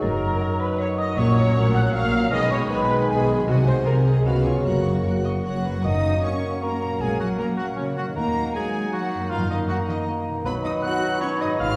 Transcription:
Already playing: F#3 A#3 D#4 F#4 A#4 D#5 F#5 A#5
0.02 F#1 F#2 A#4 A#5
0.13 F#3
0.23 A#3
0.33 D#4
0.41 F#4 D#5 F#5 A#5
0.51 A#4
0.60 B4 D#5 B5
0.70 F#5
0.78 C#5 D#5 F#5 A#5 C#6
0.90 A#4
0.98 F#4 D#5 D#6
1.09 D#4
1.17 A#1 A#2 F#3 C#4 A#4 C#5 F#5 C#6
1.27 F#3
1.35 A#3 C#5 F#5 A#5
1.47 C#4
1.54 A#1 A#2 F#4 C#5 F#5 C#6
1.65 A#4
1.74 C#5 F#5 A#5 F#6
1.85 F#5
1.93 A#1 A#2 C#5 F5 F#5 C#6 F6
2.03 A#4
2.12 F#4 C#5 F#5 A#5
2.22 C#4
2.32 B1 B2 D#3 G#3 G#4 B4 D#5 G#5 B5 D#6
2.51 C#5 D#5 G#5 B5 C#6
2.61 D#4
2.69 B1 B2 G#4 B4 G#5 B5
2.80 D#4
2.90 D#5 G#5 B5
2.99 G#5
3.08 B1 B2 G#4 B4 D#5 G#5 B5
3.18 G#4
3.28 D#4 D#5 G#5 B5
3.37 G#3
3.47 C2 C3 F#4 C5 F#5 G#5
3.56 F#3
3.65 G#3 C5 D#5 F#5 G#5 C6
3.76 D#4
3.86 C2 C3 G#4 A#4 C5 F#5 G#5 A#5
3.96 D#4
4.05 G#4 D#5 F#5 G#5
4.24 C#2 C#3 B3 F#4 B4 F5 F#5 B5 F6
4.35 G#3
4.44 B3 F4 F5 G#5 C#6
4.55 C#4
4.64 F#1 F#2 A#3 F#4 A#4 C#5 F#5 A#5 F#6
4.74 C#3
4.83 A#3 F#5 C#6
4.95 C#4
5.04 F#1 F#2 F#4 A#4 F#6
5.15 A#4
5.24 C#5 D#5 C#6
5.35 F#5
5.44 F#1 F#2 F#3 F#4 C#5 F#5 F#6
5.64 F#2 F#4 B4 C#6
5.71 A#3 C#4
5.80 A#3 F#4 D#5 D#6
5.84 F#1 F#3 C#4 D#4 A#4 F#5 D#6
6.23 A#3 C#4 F#4 C#5 C#6
6.62 A#3 F#4 A#4 A#5
6.84 A#2
6.88 A#3
6.92 C#4
6.97 F#4 G#5
7.01 A#1 G#3 G#4 G#5
7.20 F#3 F#4 F#5
7.39 A#3 F#4 A#4 A#5
7.57 F#3 F#4 F#5
7.76 C#3 A#3 C#4 F#4 C#5
7.97 D#3 F#3 F#4 F#5
8.04 A#3
8.08 D#4
8.13 A#3 D#4 F#4 A#4 F#5
8.17 D#2 A#3 A#5
8.54 G#3 A#3 F#4 G#4 G#5
8.93 F#3 A#3 F#4 F#5
9.14 F#2
9.19 A#3
9.23 D#4
9.27 F4 F#4
9.31 F#2 D#3 F3 F5 A#5
9.51 D#3 D#4 D#5
9.68 F#3 A#3 D#4 F#4 F#5
9.88 D#3 D#4 D#5
10.07 A#3 D#4
10.28 B2
10.33 B3
10.37 D#4
10.42 F#3 B3 D#4 F#4 B4 B5
10.46 B1 B5
10.64 D#4 D#5 D#6
10.82 B3 D#4 F#4 F#5 F#6
11.21 B3 C#4 D#4 C#5 C#6
11.41 G#2 D#4 D#5 D#6
11.48 B3
11.52 D#4
11.57 G#1 F4 F#4 F5 F6
11.61 F#3

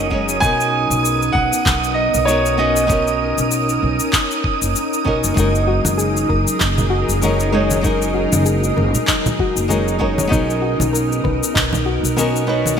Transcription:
Already playing: F#1 F#3 D#4 G#4 A#4 D#6
0.10 G#3 C#4 D#4 F#4 C#5, kick
0.29 cabasa
0.40 B1 B3 C#4 D#4 F#4 A#4 G#5, kick, cabasa
0.45 A#4
0.61 cabasa
0.90 B1, cabasa
1.05 cabasa
1.22 cabasa
1.33 B1 F#5, kick
1.53 cabasa
1.66 B1, kick, clap, cabasa
1.84 cabasa
1.94 D#5
2.14 B1, cabasa
2.25 B3 C#4 D#4 F#4 A#4 C#5, cabasa
2.46 cabasa
2.58 B3 C#4 D#4 F#4 B4 D#5
2.76 cabasa
2.87 B3 C#4 D#4 F#4, kick, cabasa
2.92 A#4
3.08 cabasa
3.38 B1, cabasa
3.51 cabasa
3.69 cabasa
3.83 B1
4.00 cabasa
4.13 kick, clap, cabasa
4.31 cabasa
4.44 kick
4.62 F#1, cabasa
4.76 cabasa
4.93 cabasa
5.04 B1 B3 C#4 D#4 F#4 A#4, kick
5.24 F#1, cabasa
5.34 F#1 F#3 G#3 C#4 D#4 F#4 G#4 A#4, kick, cabasa
5.39 A#4
5.55 cabasa
5.68 F#4
5.85 F#1, high conga, cabasa
5.98 G#4, cabasa
6.17 cabasa
6.29 F#1 A#4, kick
6.48 cabasa
6.60 F#1 D#4, kick, clap, cabasa
6.78 high conga, low conga, cabasa
6.90 F#4
7.09 F#1, cabasa
7.21 G#3 C#4 D#4 F#4 G#4 A#4, high conga, cabasa
7.40 cabasa
7.52 G#3 C#4 D#4 F#4 A#4 C#5
7.71 high conga, cabasa
7.81 G#3 C#4 D#4 F#4, kick, cabasa
7.86 A#4
8.02 cabasa
8.14 F#4
8.32 F#1, high conga, cabasa
8.46 G#4, cabasa
8.64 cabasa
8.77 F#1 A#4, high conga
8.95 low conga, cabasa
9.07 D#4, kick, clap, cabasa
9.26 high conga, low conga, cabasa
9.39 F#4, kick
9.56 F#1, cabasa
9.68 G#3 C#4 D#4 F#4 G#4 A#4, high conga, cabasa
9.88 cabasa
9.99 G#3 C#4 D#4 F#4 A#4 C#5, kick
10.18 high conga, cabasa
10.27 B3 C#4 D#4 A#4
10.32 B1 B3 D#4 F#4 A#4, kick, cabasa
10.50 cabasa
10.62 F#4
10.80 B1, high conga, cabasa
10.93 A#4, cabasa
11.12 cabasa
11.24 B1 B4, kick, high conga
11.43 cabasa
11.54 B1 D#4, kick, clap, cabasa
11.73 high conga, low conga, cabasa
11.86 F#4
12.03 B1, cabasa
12.17 B3 C#4 D#4 F#4 A#4, high conga, cabasa
12.36 cabasa
12.47 B3 C#4 D#4 F#4 B4
12.66 high conga, cabasa

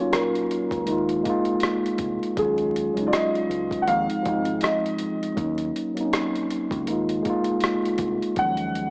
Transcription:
Already playing: F#3 A#3 D#4 C#5
0.00 C#4 F4
0.12 A#4, cross-stick, closed hi-hat
0.35 closed hi-hat
0.51 closed hi-hat
0.71 C#2, kick, closed hi-hat
0.85 D#2 G#3 A#3, closed hi-hat
0.90 D#4 F4
1.09 closed hi-hat
1.23 G#3 A#3, kick, closed hi-hat
1.28 D#4 F4
1.45 closed hi-hat
1.60 cross-stick, closed hi-hat
1.86 closed hi-hat
1.98 C2, kick, closed hi-hat
2.23 closed hi-hat
2.35 D#2 F#3 G#3 G#4, kick, closed hi-hat
2.40 C#4 F4
2.58 closed hi-hat
2.76 closed hi-hat
2.94 C#2 F#3 G#3, closed hi-hat
2.99 C#4 D#4
3.07 F4 D5
3.13 D#5, cross-stick, closed hi-hat
3.34 muted fingered electric bass stroke, closed hi-hat
3.50 C#2, closed hi-hat
3.71 kick, closed hi-hat
3.82 F3 F#5
3.87 D#2 G#3 C4 F5, closed hi-hat
3.91 D#4
4.09 muted fingered electric bass stroke, closed hi-hat
4.22 G#1 F3 G#3, kick, closed hi-hat
4.27 C4 D#4
4.45 closed hi-hat
4.61 D#5, cross-stick, closed hi-hat
4.86 closed hi-hat
4.99 closed hi-hat
5.23 closed hi-hat
5.35 D#2 F#3 A#3, kick, closed hi-hat
5.39 C#4 D#4
5.58 closed hi-hat
5.76 closed hi-hat
5.94 F#3 A#3, closed hi-hat
5.98 C4 D#4
6.05 C#4
6.13 cross-stick, closed hi-hat
6.36 closed hi-hat
6.51 closed hi-hat
6.71 C#2, kick, closed hi-hat
6.86 D#2 G#3 A#3, closed hi-hat
6.90 D#4 F4
7.09 closed hi-hat
7.23 G#3 A#3, kick, closed hi-hat
7.27 D#4 F4
7.44 closed hi-hat
7.60 cross-stick, closed hi-hat
7.85 closed hi-hat
7.98 C2, kick, closed hi-hat
8.23 closed hi-hat
8.35 D#2 F#3 G#3 F#5, kick, closed hi-hat
8.40 F3 C#4
8.57 closed hi-hat
8.75 closed hi-hat

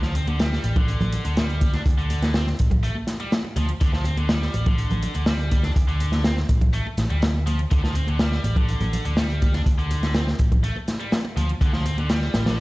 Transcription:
Already playing: D2
0.02 F3, snare
0.15 C4, closed hi-hat, muted conga
0.27 D3, closed hi-hat, high conga
0.39 G3, snare, closed hi-hat
0.53 snare
0.64 A1, closed hi-hat, muted conga
0.76 D3, kick, closed hi-hat, low conga
0.88 closed hi-hat
1.01 A1, closed hi-hat, high conga, low conga
1.12 closed hi-hat, muted conga, low conga
1.25 D2 D3, closed hi-hat
1.37 G3, snare, closed hi-hat
1.50 closed hi-hat
1.61 kick, closed hi-hat, high conga
1.74 D4, snare, closed hi-hat, muted conga
1.86 D2, kick, closed hi-hat
1.98 D3, closed hi-hat
2.10 closed hi-hat, muted conga
2.22 snare, closed hi-hat, high conga
2.34 C4, snare, closed hi-hat
2.47 snare
2.59 A1, kick, closed hi-hat
2.71 kick, closed hi-hat, low conga
2.83 A3, closed hi-hat
2.95 muted conga, high conga
3.07 snare, closed hi-hat
3.20 G3, closed hi-hat
3.32 snare, closed hi-hat
3.44 muted conga
3.56 D2 F3, closed hi-hat, high conga
3.69 closed hi-hat
3.81 D2 D3, kick, closed hi-hat
3.93 F3, snare
4.04 C4, closed hi-hat, muted conga
4.17 D3, closed hi-hat, high conga
4.29 G3, snare, closed hi-hat
4.42 snare
4.54 A1, closed hi-hat, muted conga
4.66 D3, kick, closed hi-hat, low conga
4.78 closed hi-hat
4.90 A1, closed hi-hat, high conga, low conga
5.03 closed hi-hat, muted conga, low conga
5.14 D2 D3, closed hi-hat
5.26 G3, snare, closed hi-hat
5.39 closed hi-hat
5.51 kick, closed hi-hat, high conga
5.63 D4, snare, closed hi-hat, muted conga
5.76 D2, kick, closed hi-hat
5.88 D3, closed hi-hat
6.00 closed hi-hat, muted conga
6.12 snare, closed hi-hat, high conga
6.24 C4, snare, closed hi-hat
6.37 snare
6.49 A1, kick, closed hi-hat
6.61 kick, closed hi-hat, low conga
6.73 A3, closed hi-hat
6.86 muted conga, high conga
6.97 A1, snare, closed hi-hat
7.10 D2 G3, closed hi-hat
7.22 snare, closed hi-hat
7.34 muted conga
7.47 F3, closed hi-hat, high conga
7.59 closed hi-hat
7.71 D2 D3, kick, closed hi-hat
7.83 F3, snare
7.95 C4, closed hi-hat, muted conga
8.07 D3, closed hi-hat, high conga
8.19 G3, snare, closed hi-hat
8.32 snare
8.44 A1, closed hi-hat, muted conga
8.56 D3, kick, closed hi-hat, low conga
8.68 closed hi-hat
8.80 A1, closed hi-hat, high conga, low conga
8.93 closed hi-hat, muted conga, low conga
9.05 D2 D3, closed hi-hat
9.17 G3, snare, closed hi-hat
9.30 closed hi-hat
9.42 kick, closed hi-hat, high conga
9.53 D4, snare, closed hi-hat, muted conga
9.66 D2, kick, closed hi-hat
9.78 D3, closed hi-hat
9.91 closed hi-hat, muted conga
10.03 snare, closed hi-hat, high conga
10.14 C4, snare, closed hi-hat
10.27 snare
10.39 A1, kick, closed hi-hat
10.52 kick, closed hi-hat, low conga
10.64 A3, closed hi-hat
10.76 muted conga, high conga
10.88 snare, closed hi-hat
11.00 G3, closed hi-hat
11.12 snare, closed hi-hat
11.25 muted conga
11.37 D2 F3, closed hi-hat, high conga
11.49 closed hi-hat
11.61 D2 D3, kick, closed hi-hat
11.73 F3, snare
11.86 C4, closed hi-hat, muted conga
11.98 D3, closed hi-hat, high conga
12.09 G3, snare, closed hi-hat
12.22 snare
12.34 A1, snare, closed hi-hat, muted conga
12.46 D3, snare, closed hi-hat, low conga

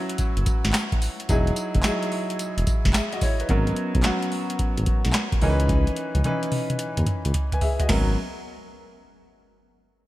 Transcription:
Already playing: F#3 C#4 E4 F#4 B4
0.09 closed hi-hat
0.18 kick, closed hi-hat, tambourine
0.37 F#1, closed hi-hat
0.46 kick, closed hi-hat, tambourine
0.64 G#1, snare, closed hi-hat
0.73 snare, clap, closed hi-hat, tambourine
0.92 kick, closed hi-hat
1.02 open hi-hat, tambourine
1.20 closed hi-hat
1.29 E1 F#3 D#4 E4 G#4, kick, closed hi-hat, tambourine
1.47 closed hi-hat
1.56 closed hi-hat, tambourine
1.75 F#1, kick, closed hi-hat
1.83 F#3 D#4 E4 G#4, snare, clap, closed hi-hat, tambourine
2.03 closed hi-hat
2.12 open hi-hat
2.30 closed hi-hat
2.39 closed hi-hat, tambourine
2.57 E1, closed hi-hat
2.67 kick, closed hi-hat, tambourine
2.85 F#1, kick, snare, closed hi-hat
2.93 G#4 E5, snare, clap, closed hi-hat, tambourine
3.12 F#4 D#5, closed hi-hat
3.21 E4 C#5, kick, open hi-hat, tambourine
3.40 D#4 B4, closed hi-hat
3.49 G#1 F#3 B3 C#4 A#4, kick, closed hi-hat
3.67 closed hi-hat
3.76 closed hi-hat
3.95 B1, kick, closed hi-hat
4.03 F#3 B3 C#4 F#4, snare, clap, closed hi-hat
4.22 closed hi-hat
4.32 open hi-hat
4.50 closed hi-hat
4.59 kick, closed hi-hat
4.77 G#1, closed hi-hat
4.86 kick, closed hi-hat
5.05 B1, snare, closed hi-hat
5.13 snare, clap, closed hi-hat
5.32 kick, closed hi-hat
5.42 C#2 E3 C#4 D#4 A#4, open hi-hat
5.50 B4
5.60 closed hi-hat
5.69 kick, closed hi-hat, high tom
5.87 closed hi-hat, high tom
5.96 closed hi-hat
6.15 C#2, closed hi-hat, high tom
6.24 E3 C#4 D#4 B4, closed hi-hat, mid tom
6.43 closed hi-hat
6.52 open hi-hat, mid tom
6.70 closed hi-hat, mid tom
6.79 closed hi-hat
6.97 D#2, closed hi-hat, mid tom
7.07 closed hi-hat, mid tom
7.25 C#2, closed hi-hat
7.34 closed hi-hat, floor tom
7.52 B4 G#5, closed hi-hat, floor tom
7.61 G#4 E5, floor tom, open hi-hat
7.80 F#4 D#5, closed hi-hat, floor tom
7.89 G#1 F#3 B3 C#4 A#4, snare, floor tom, crash

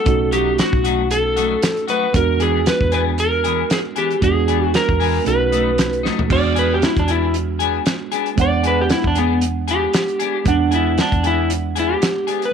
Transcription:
Already playing: A4
0.04 B1 A3 C#4 D#4 F#4, kick, closed hi-hat
0.32 F#3 A3 D#4 F#4 G4, closed hi-hat
0.58 F#4, snare, closed hi-hat
0.73 B1, kick
0.84 F#3 A3 D#4 F#4, closed hi-hat
1.11 A4, closed hi-hat
1.36 F#3 A3 D#4 F#4, closed hi-hat
1.62 snare, closed hi-hat
1.77 closed hi-hat
1.87 F#3 A3 D#4 F#4 B4, closed hi-hat
2.13 E2 G#3 B3 D4 F#4 A#4, kick, closed hi-hat
2.40 E3 B3 D4 G#4, closed hi-hat
2.66 B4, snare, closed hi-hat
2.81 E2, kick
2.92 E3 B3 D4 G#4 B4, closed hi-hat
3.18 A#4, closed hi-hat
3.44 E3 B3 D4 G#4, closed hi-hat
3.70 G#4, snare, closed hi-hat
3.96 E3 B3 D4 G4 G#4, closed hi-hat
4.11 closed hi-hat
4.21 E2 G#3 B3 D4 G#4, kick, closed hi-hat
4.25 F#4
4.48 E3 B3 D4 G#4, closed hi-hat
4.74 A#4, snare, closed hi-hat
4.89 E2, kick
5.00 E3 B3 D4 G#4, open hi-hat
5.25 B1 A3 C#4 D#4 F#4 B4, closed hi-hat
5.52 F#3 A3 D#4, closed hi-hat
5.78 snare, closed hi-hat
5.93 closed hi-hat
6.03 F#3 A3 D#4, snare
6.19 floor tom
6.28 E2 G#3 B3 D4 F#4, kick, crash
6.33 D5
6.55 B3 D4 G#4 B4, closed hi-hat
6.74 G4
6.82 E4, snare, closed hi-hat
6.97 E2 D4, kick, closed hi-hat
7.08 B3 D4 E4 G#4, closed hi-hat
7.34 closed hi-hat
7.59 B3 D4 G#4, closed hi-hat
7.86 snare, closed hi-hat
8.12 B3 D4 G#4, closed hi-hat
8.26 closed hi-hat
8.36 E2 G#3 B3 D4, kick, closed hi-hat
8.40 D5 F#5
8.63 B3 D4 G#4, closed hi-hat
8.67 B4
8.81 G4
8.90 E4, snare, closed hi-hat
9.04 E2 D4, kick
9.15 B3 D4 G#4, closed hi-hat
9.41 closed hi-hat
9.68 B3 D4 G4 G#4, closed hi-hat
9.93 snare, closed hi-hat
10.08 closed hi-hat
10.19 B3 D4 G#4, closed hi-hat
10.44 E2 G#3 B3 D4 F#5, kick, closed hi-hat
10.49 D4
10.71 B3 D4 E4 G#4, closed hi-hat
10.98 D4, snare, closed hi-hat
11.12 E2, kick, closed hi-hat
11.23 B3 D4 E4 G#4, closed hi-hat
11.50 closed hi-hat
11.75 B3 D4 G#4, closed hi-hat
11.80 E4
11.94 G4
12.02 snare, closed hi-hat
12.27 B3 D4 G#4, closed hi-hat
12.42 B4, closed hi-hat

